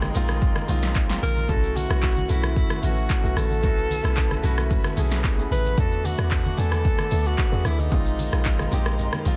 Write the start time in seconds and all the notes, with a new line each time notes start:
Already playing: A#1 G#3 C4 D#4 F4 G4 A#4 D#5 A#5 C6
0.02 cross-stick, high conga, shaker
0.14 A#1 G#3 C4 D#4 F4, open hi-hat, low conga, shaker
0.29 cross-stick, high conga, shaker
0.42 kick, low conga, shaker
0.56 cross-stick, high conga, shaker
0.67 B1 G#3 C4 D#4 F4, open hi-hat, high conga, shaker
0.82 snare, shaker
0.95 kick, clap, shaker
1.08 G#3 C4 D#4 F4, snare, shaker
1.22 A#1 A#4, open hi-hat, high conga, shaker
1.36 high conga, shaker
1.48 B1 A3 C#4 E4 F#4 A4 B4 E5 F#5 C#6, kick, low conga, shaker
1.63 shaker
1.76 F#4, open hi-hat, high conga, shaker
1.88 B1 A3 C#4 E4 F#4, cross-stick, shaker
2.03 kick, clap, shaker
2.16 high conga, shaker
2.28 B1 A3 C#4 E4 F#4, open hi-hat, low conga, shaker
2.43 cross-stick, high conga, shaker
2.56 E4, kick, low conga, shaker
2.70 cross-stick, high conga, shaker
2.82 A1 A3 C#4 E4 F#4, open hi-hat, high conga, shaker
2.96 shaker
3.10 kick, clap, shaker
3.22 B1 A3 C#4 E4 F#4, shaker
3.36 A1 A4, cross-stick, open hi-hat, high conga, shaker
3.51 high conga, shaker
3.62 B1 A3 C#4 E4 F#4 B5, kick, low conga, shaker
3.78 shaker
3.90 open hi-hat, high conga, shaker
4.03 B1 A3 C#4 E4 A4, cross-stick, shaker
4.17 kick, clap, shaker
4.31 cross-stick, high conga, shaker
4.43 B1 A3 C#4 E4 F#4, open hi-hat, low conga, shaker
4.57 cross-stick, high conga, shaker
4.70 kick, low conga, shaker
4.84 cross-stick, high conga, shaker
4.96 B1 A3 C#4 E4 G#4, open hi-hat, high conga, shaker
5.11 snare, shaker
5.24 kick, clap, shaker
5.37 A3 C#4 E4 G#4, shaker
5.51 A1 B4, open hi-hat, high conga, shaker
5.65 high conga, shaker
5.77 E2 A3 B3 D4 F#4 A4 F#5 D6, kick, low conga, shaker
5.92 shaker
6.05 F#4, open hi-hat, high conga, shaker
6.17 E2 A3 B3 D4 F#4, cross-stick, shaker
6.31 F#4, kick, clap, shaker
6.45 high conga, shaker
6.57 E2 A3 B3 D4 A4 G#5, open hi-hat, low conga, shaker
6.72 cross-stick, high conga, shaker
6.85 kick, low conga, shaker
6.98 cross-stick, high conga, shaker
7.10 D2 A3 B3 D4 A4, open hi-hat, high conga, shaker
7.25 F#4, shaker
7.38 kick, clap, shaker
7.51 E2 A3 B3 D4 G#4, shaker
7.65 D2 E4, cross-stick, open hi-hat, high conga, shaker
7.79 D#4, high conga, shaker
7.91 A#1 G#3 C4 D#4 F4 A#4 D#5 A#5 C6, kick, low conga, shaker
8.06 shaker
8.19 open hi-hat, high conga, shaker
8.31 A#1 G#3 C4 D#4 F4, cross-stick, shaker
8.45 kick, clap, shaker
8.59 cross-stick, high conga, shaker
8.71 A#1 G#3 C4 D#4 G4, open hi-hat, low conga, shaker
8.86 cross-stick, high conga, shaker
8.99 low conga, shaker
9.13 cross-stick, high conga, shaker
9.25 A#1 G#3 C4 D#4 F4, open hi-hat, high conga, shaker